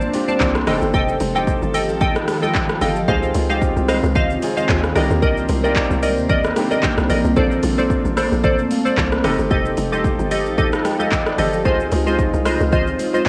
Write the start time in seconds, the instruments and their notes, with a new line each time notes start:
Already playing: ambient pad A#3 C4 D4, grand piano C4 D4 F4 A4 A#4
0.01 shaker
0.13 grand piano C4 D4 F4 G4, open hi-hat, high conga, shaker
0.28 synth pluck C5 D5 A5, high conga, shaker
0.40 log drum bass C2, kick, clap, low conga, shaker
0.55 cross-stick, shaker
0.67 log drum bass F1, ambient pad D#3 F3 G4 A4, grand piano C4 D#4 G4 G#4, synth pluck A4 D#5 G5, cross-stick, open hi-hat, high conga, low conga, shaker
0.75 grand piano A4
0.82 log drum bass G1, shaker
0.94 log drum bass F1, synth pluck A4 D#5 G5, kick, low conga, shaker
1.09 shaker
1.20 log drum bass F1, open hi-hat, high conga, shaker
1.35 grand piano C4 D#4 G4 C5, synth pluck A4 D#5 G5, high conga, shaker
1.47 kick, shaker
1.62 log drum bass G1, high conga, shaker
1.74 synth pluck A4 D#5 G5, open hi-hat, high conga, shaker
1.89 log drum bass A1, shaker
2.01 synth pluck A4 D#5 G5, kick, low conga, shaker
2.15 cross-stick, shaker
2.28 cross-stick, open hi-hat, high conga, shaker
2.42 synth pluck A4 D#5 G5, high conga, shaker
2.55 kick, clap, low conga, shaker
2.69 grand piano G5, cross-stick, shaker
2.81 log drum bass G1, synth pluck A4 D#5 G5, grand piano F5, open hi-hat, high conga, low conga, shaker
2.96 grand piano D#5, shaker
3.08 log drum bass C#2, ambient pad C#3 C4 F4, grand piano C4 D#4 F4 G#4, synth pluck C5 D#5 F5, kick, low conga, shaker
3.23 shaker
3.34 log drum bass C#2, open hi-hat, high conga, shaker
3.50 grand piano C4 D#4 F4 G4, synth pluck C5 D#5 F5, high conga, shaker
3.62 kick, shaker
3.76 log drum bass C2, high conga, shaker
3.88 synth pluck C5 D#5 F5, cross-stick, open hi-hat, high conga, shaker
4.03 log drum bass C#2, shaker
4.15 synth pluck C5 D#5 F5, kick, low conga, shaker
4.30 shaker
4.42 grand piano C4 D#4 F4 G#4, open hi-hat, high conga, shaker
4.57 synth pluck C5 D#5 F5, high conga, shaker
4.69 log drum bass D#2, kick, clap, low conga, shaker
4.83 cross-stick, shaker
4.95 log drum bass C2, ambient pad C3 A#3 C4, grand piano A#3 D4 D#4 G4, synth pluck A#4 D5 D#5, cross-stick, open hi-hat, high conga, low conga, shaker
5.10 log drum bass D#2, shaker
5.22 log drum bass C2, synth pluck A#4 D5 D#5, kick, low conga, shaker
5.37 shaker
5.49 log drum bass C2, open hi-hat, high conga, shaker
5.64 grand piano A#3 D#4 G4 D5, synth pluck A#4 D5 D#5, high conga, shaker
5.76 kick, clap, shaker
5.91 log drum bass C2, high conga, shaker
6.03 synth pluck A#4 D5 D#5, open hi-hat, high conga, shaker
6.18 log drum bass D#2, shaker
6.29 synth pluck A#4 D5 D#5, kick, low conga, shaker
6.44 cross-stick, shaker
6.56 grand piano A#3 D4 D#4 G4, cross-stick, open hi-hat, high conga, shaker
6.71 synth pluck A#4 D5 D#5, high conga, shaker
6.83 kick, clap, low conga, shaker
6.98 log drum bass C2, cross-stick, shaker
7.10 log drum bass A#1, synth pluck A#4 D5 D#5, open hi-hat, high conga, low conga, shaker
7.24 log drum bass C2, shaker
7.36 log drum bass A#1, ambient pad A3, grand piano C4 D4 F4 A4, synth pluck A4 C5 D5, kick, low conga, shaker
7.51 shaker
7.63 log drum bass A#1, open hi-hat, high conga, shaker
7.78 grand piano C4 D4 F4 A4, synth pluck A4 C5 D5, high conga, shaker
7.90 kick, shaker
8.05 log drum bass A1, high conga, shaker
8.17 synth pluck A4 C5 D5, cross-stick, open hi-hat, high conga, shaker
8.32 log drum bass A#1, shaker
8.44 synth pluck A4 C5 D5, kick, low conga, shaker
8.58 shaker
8.71 grand piano F5, open hi-hat, high conga, shaker
8.85 synth pluck A4 C5 D5, grand piano D5, high conga, shaker
8.97 log drum bass C2, grand piano C5, kick, clap, low conga, shaker
9.12 grand piano A#4, cross-stick, shaker
9.24 log drum bass F1, ambient pad F3 D#4 G4 A4, grand piano C4 D#4 G4 A4, synth pluck G4 A4 D#5, cross-stick, open hi-hat, high conga, low conga, shaker
9.39 log drum bass G1, shaker
9.51 log drum bass F1, synth pluck G4 A4 D#5, kick, low conga, shaker
9.66 shaker
9.77 log drum bass F1, open hi-hat, high conga, shaker
9.92 grand piano C4 D#4 G4 C5, synth pluck G4 A4 D#5, high conga, shaker
10.04 kick, shaker
10.19 log drum bass G1, high conga, shaker
10.31 synth pluck G4 A4 D#5, open hi-hat, high conga, shaker
10.46 log drum bass A1, shaker
10.58 synth pluck G4 A4 D#5, kick, low conga, shaker
10.73 cross-stick, shaker
10.85 grand piano G5, cross-stick, open hi-hat, high conga, shaker
10.99 synth pluck G4 A4 D#5, grand piano F5, high conga, shaker
11.12 grand piano D#5, kick, clap, low conga, shaker
11.26 grand piano D5, cross-stick, shaker
11.38 log drum bass G1, synth pluck G4 A4 D#5, grand piano C5, open hi-hat, high conga, low conga, shaker
11.53 grand piano A4, shaker
11.65 log drum bass C#2, ambient pad C#3 C4 F4, grand piano C4 D#4 F4 G#4, synth pluck F4 C5 D#5, kick, low conga, shaker
11.80 shaker
11.91 log drum bass C#2, open hi-hat, high conga, shaker
12.06 grand piano C4 D#4 F4 G#4, synth pluck F4 C5 D#5, high conga, shaker
12.19 kick, shaker
12.34 log drum bass C2, high conga, shaker
12.45 synth pluck F4 C5 D#5, cross-stick, open hi-hat, high conga, shaker
12.60 log drum bass C#2, shaker
12.72 synth pluck F4 C5 D#5, kick, low conga, shaker
12.87 shaker
12.99 open hi-hat, high conga, shaker
13.14 synth pluck F4 C5 D#5, grand piano C5, high conga, shaker